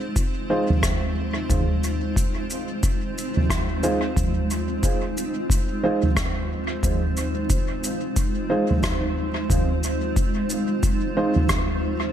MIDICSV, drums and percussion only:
0, 0, Header, 1, 2, 480
1, 0, Start_track
1, 0, Key_signature, -4, "minor"
1, 0, Tempo, 666667
1, 1081, Time_signature, 4, 2, 24, 8
1, 8730, End_track
2, 0, Start_track
2, 0, Title_t, "Drums"
2, 116, Note_on_c, 9, 36, 98
2, 118, Note_on_c, 9, 82, 60
2, 188, Note_off_c, 9, 36, 0
2, 190, Note_off_c, 9, 82, 0
2, 505, Note_on_c, 9, 45, 77
2, 577, Note_off_c, 9, 45, 0
2, 597, Note_on_c, 9, 36, 92
2, 597, Note_on_c, 9, 37, 78
2, 599, Note_on_c, 9, 82, 65
2, 669, Note_off_c, 9, 36, 0
2, 669, Note_off_c, 9, 37, 0
2, 671, Note_off_c, 9, 82, 0
2, 1077, Note_on_c, 9, 36, 93
2, 1081, Note_on_c, 9, 45, 78
2, 1081, Note_on_c, 9, 82, 66
2, 1149, Note_off_c, 9, 36, 0
2, 1153, Note_off_c, 9, 45, 0
2, 1153, Note_off_c, 9, 82, 0
2, 1322, Note_on_c, 9, 82, 43
2, 1394, Note_off_c, 9, 82, 0
2, 1558, Note_on_c, 9, 36, 93
2, 1564, Note_on_c, 9, 82, 63
2, 1630, Note_off_c, 9, 36, 0
2, 1636, Note_off_c, 9, 82, 0
2, 1802, Note_on_c, 9, 82, 41
2, 1874, Note_off_c, 9, 82, 0
2, 2039, Note_on_c, 9, 36, 96
2, 2040, Note_on_c, 9, 82, 67
2, 2111, Note_off_c, 9, 36, 0
2, 2112, Note_off_c, 9, 82, 0
2, 2290, Note_on_c, 9, 82, 45
2, 2362, Note_off_c, 9, 82, 0
2, 2427, Note_on_c, 9, 45, 79
2, 2499, Note_off_c, 9, 45, 0
2, 2518, Note_on_c, 9, 36, 91
2, 2523, Note_on_c, 9, 37, 78
2, 2526, Note_on_c, 9, 82, 57
2, 2590, Note_off_c, 9, 36, 0
2, 2595, Note_off_c, 9, 37, 0
2, 2598, Note_off_c, 9, 82, 0
2, 2759, Note_on_c, 9, 82, 46
2, 2831, Note_off_c, 9, 82, 0
2, 2999, Note_on_c, 9, 36, 95
2, 2999, Note_on_c, 9, 45, 69
2, 3004, Note_on_c, 9, 82, 62
2, 3071, Note_off_c, 9, 36, 0
2, 3071, Note_off_c, 9, 45, 0
2, 3076, Note_off_c, 9, 82, 0
2, 3243, Note_on_c, 9, 82, 48
2, 3315, Note_off_c, 9, 82, 0
2, 3479, Note_on_c, 9, 36, 95
2, 3480, Note_on_c, 9, 82, 65
2, 3551, Note_off_c, 9, 36, 0
2, 3552, Note_off_c, 9, 82, 0
2, 3726, Note_on_c, 9, 82, 45
2, 3798, Note_off_c, 9, 82, 0
2, 3958, Note_on_c, 9, 36, 103
2, 3968, Note_on_c, 9, 82, 70
2, 4030, Note_off_c, 9, 36, 0
2, 4040, Note_off_c, 9, 82, 0
2, 4343, Note_on_c, 9, 45, 73
2, 4415, Note_off_c, 9, 45, 0
2, 4438, Note_on_c, 9, 36, 106
2, 4440, Note_on_c, 9, 37, 92
2, 4442, Note_on_c, 9, 82, 65
2, 4510, Note_off_c, 9, 36, 0
2, 4512, Note_off_c, 9, 37, 0
2, 4514, Note_off_c, 9, 82, 0
2, 4918, Note_on_c, 9, 36, 98
2, 4920, Note_on_c, 9, 45, 72
2, 4922, Note_on_c, 9, 82, 72
2, 4990, Note_off_c, 9, 36, 0
2, 4992, Note_off_c, 9, 45, 0
2, 4994, Note_off_c, 9, 82, 0
2, 5161, Note_on_c, 9, 82, 45
2, 5233, Note_off_c, 9, 82, 0
2, 5398, Note_on_c, 9, 36, 104
2, 5398, Note_on_c, 9, 82, 64
2, 5470, Note_off_c, 9, 36, 0
2, 5470, Note_off_c, 9, 82, 0
2, 5643, Note_on_c, 9, 82, 47
2, 5715, Note_off_c, 9, 82, 0
2, 5878, Note_on_c, 9, 36, 99
2, 5879, Note_on_c, 9, 82, 66
2, 5950, Note_off_c, 9, 36, 0
2, 5951, Note_off_c, 9, 82, 0
2, 6269, Note_on_c, 9, 45, 82
2, 6341, Note_off_c, 9, 45, 0
2, 6358, Note_on_c, 9, 36, 100
2, 6359, Note_on_c, 9, 82, 74
2, 6363, Note_on_c, 9, 37, 93
2, 6430, Note_off_c, 9, 36, 0
2, 6431, Note_off_c, 9, 82, 0
2, 6435, Note_off_c, 9, 37, 0
2, 6838, Note_on_c, 9, 36, 103
2, 6843, Note_on_c, 9, 45, 69
2, 6843, Note_on_c, 9, 82, 57
2, 6910, Note_off_c, 9, 36, 0
2, 6915, Note_off_c, 9, 45, 0
2, 6915, Note_off_c, 9, 82, 0
2, 7081, Note_on_c, 9, 82, 41
2, 7153, Note_off_c, 9, 82, 0
2, 7318, Note_on_c, 9, 36, 103
2, 7321, Note_on_c, 9, 82, 61
2, 7390, Note_off_c, 9, 36, 0
2, 7393, Note_off_c, 9, 82, 0
2, 7559, Note_on_c, 9, 82, 40
2, 7631, Note_off_c, 9, 82, 0
2, 7798, Note_on_c, 9, 36, 111
2, 7798, Note_on_c, 9, 82, 58
2, 7870, Note_off_c, 9, 36, 0
2, 7870, Note_off_c, 9, 82, 0
2, 8180, Note_on_c, 9, 45, 78
2, 8252, Note_off_c, 9, 45, 0
2, 8273, Note_on_c, 9, 82, 68
2, 8275, Note_on_c, 9, 37, 98
2, 8278, Note_on_c, 9, 36, 105
2, 8345, Note_off_c, 9, 82, 0
2, 8347, Note_off_c, 9, 37, 0
2, 8350, Note_off_c, 9, 36, 0
2, 8730, End_track
0, 0, End_of_file